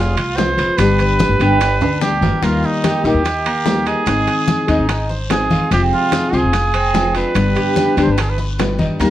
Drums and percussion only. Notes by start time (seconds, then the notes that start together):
0.17 high conga, high timbale, maracas
0.37 high bongo, low bongo, high conga, low timbale, short guiro, maracas
0.58 high bongo, high conga, high timbale, short guiro, maracas
0.78 high bongo, high conga, high timbale, long guiro, maracas
0.98 high bongo, high conga, high timbale, maracas
1.19 high bongo, high conga, low timbale, short guiro, maracas
1.39 high bongo, high timbale, short guiro, maracas
1.61 high bongo, high conga, high timbale, long guiro, maracas
1.81 high bongo, high conga, high timbale, maracas
2.01 high bongo, low bongo, high conga, short guiro, maracas
2.22 high conga, low timbale, short guiro, maracas
2.43 high bongo, high conga, high timbale, long guiro, maracas
2.63 high bongo, high conga, maracas
2.84 high bongo, high conga, high timbale, low timbale, short guiro, maracas
3.04 high bongo, short guiro, maracas
3.25 high bongo, high conga, high timbale, long guiro, maracas
3.45 high conga, high timbale, maracas
3.66 high bongo, low bongo, high conga, low timbale, short guiro, maracas
3.86 high bongo, high conga, high timbale, short guiro, maracas
4.06 high bongo, high conga, high timbale, long guiro, maracas
4.27 high bongo, high conga, high timbale, maracas
4.47 high bongo, high conga, low timbale, short guiro, maracas
4.68 high bongo, high timbale, short guiro, maracas
4.89 high bongo, high conga, high timbale, long guiro, maracas
5.10 high bongo, high conga, maracas
5.30 high bongo, low bongo, high conga, high timbale, low timbale, short guiro, maracas
5.50 high conga, short guiro, maracas
5.71 high bongo, high conga, high timbale, long guiro, maracas
5.92 high bongo, high conga, maracas
6.12 high bongo, high conga, high timbale, low timbale, short guiro, maracas
6.33 high bongo, short guiro, maracas
6.53 high bongo, high conga, high timbale, long guiro, maracas
6.74 high conga, high timbale, maracas
6.94 high bongo, low bongo, high conga, low timbale, short guiro, maracas
7.15 high bongo, high conga, high timbale, short guiro, maracas
7.35 high bongo, high conga, high timbale, long guiro, maracas
7.56 high bongo, high conga, high timbale, maracas
7.76 high bongo, high conga, low timbale, short guiro, maracas
7.97 high bongo, high timbale, short guiro, maracas
8.18 high bongo, high conga, high timbale, long guiro, maracas
8.38 high bongo, high conga, maracas
8.58 high bongo, low bongo, high conga, high timbale, low timbale, short guiro, maracas
8.79 high conga, short guiro, maracas
9.00 high bongo, high conga, high timbale, long guiro, maracas